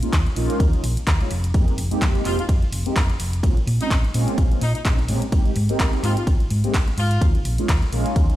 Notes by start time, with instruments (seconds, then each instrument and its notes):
0.02 analog polysynth G#3 A#3 C#4 D#4 F4, muted fingered electric bass stroke, closed hi-hat
0.13 fingered electric bass D#2, kick, clap, closed hi-hat, ride
0.27 closed hi-hat
0.36 fingered electric bass A#1, analog polysynth G#3 A#3 C#4 D#4 F4, open hi-hat
0.50 closed hi-hat
0.60 fingered electric bass D#2, kick, closed hi-hat, ride
0.73 analog polysynth G#3 A#3 C#4 D#4 F4, muted fingered electric bass stroke, closed hi-hat
0.83 fingered electric bass A#1, open hi-hat
0.97 muted fingered electric bass stroke, closed hi-hat
1.07 fingered electric bass D#2, kick, clap, closed hi-hat, ride
1.20 analog polysynth G#3 A#3 C#4 D#4 F4, closed hi-hat
1.31 fingered electric bass F1, open hi-hat
1.44 closed hi-hat
1.54 fingered electric bass F2, analog polysynth G#3 A#3 C4 D#4 G4, kick, closed hi-hat, ride
1.68 closed hi-hat
1.78 fingered electric bass F1, open hi-hat
1.91 analog polysynth G#3 A#3 C4 D#4 G4, muted fingered electric bass stroke, closed hi-hat
2.02 fingered electric bass F2, kick, clap, closed hi-hat, ride
2.15 closed hi-hat
2.25 fingered electric bass F1, analog polysynth G#3 A#3 C4 D#4 G4, horn section F4, clap, open hi-hat
2.38 horn section F4, closed hi-hat
2.49 fingered electric bass F2, kick, closed hi-hat, ride
2.62 muted fingered electric bass stroke, closed hi-hat
2.72 fingered electric bass F1, open hi-hat
2.86 analog polysynth G#3 A#3 C4 D#4 G4, muted fingered electric bass stroke, closed hi-hat
2.96 fingered electric bass F2, kick, clap, open hi-hat, ride
3.10 closed hi-hat
3.20 fingered electric bass F1, open hi-hat
3.33 closed hi-hat
3.43 fingered electric bass A#1, analog polysynth G#3 A#3 C4 C#4 F4, kick, closed hi-hat, ride
3.57 muted fingered electric bass stroke, closed hi-hat
3.67 fingered electric bass A#2, open hi-hat
3.80 analog polysynth G#3 A#3 C4 C#4 F4, horn section D#4, muted fingered electric bass stroke, closed hi-hat
3.91 fingered electric bass A#1, kick, clap, closed hi-hat, ride
4.05 closed hi-hat
4.14 fingered electric bass A#2, analog polysynth G#3 A#3 C4 C#4 F4, open hi-hat
4.28 closed hi-hat
4.38 fingered electric bass A#1, kick, closed hi-hat, ride
4.51 analog polysynth G#3 A#3 C4 C#4 F4, muted fingered electric bass stroke, closed hi-hat
4.61 fingered electric bass A#2, horn section D#4, open hi-hat
4.75 horn section D#4, muted fingered electric bass stroke, closed hi-hat
4.85 fingered electric bass A#1, analog polysynth G#3 A#3 C4 C#4 D#4, kick, clap, closed hi-hat, ride
4.99 closed hi-hat
5.08 fingered electric bass A#2, analog polysynth G#3 A#3 C4 C#4 G4, open hi-hat
5.22 closed hi-hat
5.32 fingered electric bass G#1, analog polysynth G#3 A#3 C4 D#4 G4, kick, closed hi-hat, ride
5.46 closed hi-hat
5.56 fingered electric bass G#2, open hi-hat
5.69 analog polysynth G#3 A#3 C4 D#4 G4, muted fingered electric bass stroke, closed hi-hat
5.80 fingered electric bass G#1, kick, clap, closed hi-hat, ride
5.93 closed hi-hat
6.03 fingered electric bass G#2, analog polysynth G#3 A#3 C4 D#4 G4, horn section F4, clap, open hi-hat
6.16 horn section F4, closed hi-hat
6.27 fingered electric bass G#1, kick, closed hi-hat, ride
6.40 muted fingered electric bass stroke, closed hi-hat
6.50 fingered electric bass G#2, open hi-hat
6.63 analog polysynth G#3 A#3 C4 D#4 G4, muted fingered electric bass stroke, closed hi-hat
6.74 fingered electric bass G#1, kick, clap, open hi-hat, ride
6.88 closed hi-hat
6.97 fingered electric bass G#2, horn section F4, open hi-hat
7.11 closed hi-hat
7.21 fingered electric bass D#2, analog polysynth G#3 A#3 C#4 D#4 F4, kick, closed hi-hat, ride
7.35 muted fingered electric bass stroke, closed hi-hat
7.45 fingered electric bass A#1, open hi-hat
7.58 analog polysynth G#3 A#3 C#4 D#4 F4, muted fingered electric bass stroke, closed hi-hat
7.69 fingered electric bass D#2, kick, clap, closed hi-hat, ride
7.82 closed hi-hat
7.92 fingered electric bass A#1, analog polysynth G#3 A#3 C#4 D#4 F4, open hi-hat
8.06 closed hi-hat
8.16 fingered electric bass D#2, kick, closed hi-hat, ride
8.29 analog polysynth G#3 A#3 C#4 D#4 F4, muted fingered electric bass stroke, closed hi-hat